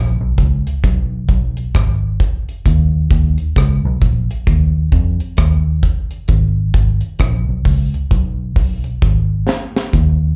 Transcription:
Already playing: A#1
0.21 B1
0.38 C#2, kick, closed hi-hat
0.67 closed hi-hat
0.84 B1, kick, closed hi-hat
1.29 B1, kick, closed hi-hat
1.57 closed hi-hat
1.75 G#1, kick, cross-stick, closed hi-hat
2.20 kick, closed hi-hat
2.49 closed hi-hat
2.66 D#2, kick, closed hi-hat
3.11 D#2, kick, closed hi-hat
3.38 closed hi-hat
3.56 C#2, kick, cross-stick, closed hi-hat
3.85 B1
4.02 A#1, kick, closed hi-hat
4.31 closed hi-hat
4.47 D#2, kick, closed hi-hat
4.92 F2, kick, closed hi-hat
5.20 closed hi-hat
5.37 D#2, kick, cross-stick, closed hi-hat
5.83 kick, closed hi-hat
6.11 closed hi-hat
6.28 G#1, kick, closed hi-hat
6.74 G#1, kick, closed hi-hat
7.01 closed hi-hat
7.19 A#1, kick, cross-stick, closed hi-hat
7.49 B1
7.65 C#2, kick, open hi-hat
7.94 closed hi-hat
8.11 B1, kick, closed hi-hat
8.56 B1, kick, open hi-hat
8.84 closed hi-hat
9.02 G#1, kick
9.49 snare
9.76 snare
9.93 D#2, kick, closed hi-hat

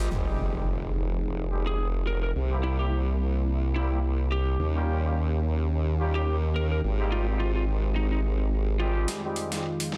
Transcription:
Already playing: G3 G#3 C4 D#4 F4 G4
0.11 F1 F3 C4 D#4 G#4, impact
0.27 G3 G#3 C4 D#4 G4
0.55 G3 G#3 C4 D#4 G4
1.51 G3 G#3 C4 D#4 G4
1.67 G3 G#3 C4 D#4 G4 G#4
2.07 A#4
2.23 A#4
2.35 C2 C3 G3 A#3 E4
2.51 G3 A#3 C4 E4 G4
2.63 E4
2.79 G3 A#3 C4 E4 G4
3.75 G3 A#3 C4 E4 G4
3.91 G3 A#3 C4 E4 G4
4.32 G4
4.59 D#2 D#3 A#3 C#4 G4
4.75 G3 A#3 C#4 F4 G4
5.03 G3 A#3 C#4 F4 G4
6.00 G3 A#3 C#4 F4 G4
6.15 G3 A#3 C#4 F4 G4
6.56 A#4
6.72 A#4
6.83 G#1 G#3 C4
7.00 G3 A#3 C4 D#4 G4
7.12 F4
7.28 G3 A#3 C4 D#4 G4
7.40 F4
7.56 F4
7.96 D#4
8.12 D#4
8.80 G3 G#3 C4 D#4 F4 G4
9.08 F2 D#3 G#3 F4, snare, closed hi-hat
9.24 G3 G#3 C4 D#4 G4
9.36 closed hi-hat
9.52 G3 G#3 C4 D#4 G4, snare, closed hi-hat
9.80 closed hi-hat
9.92 snare

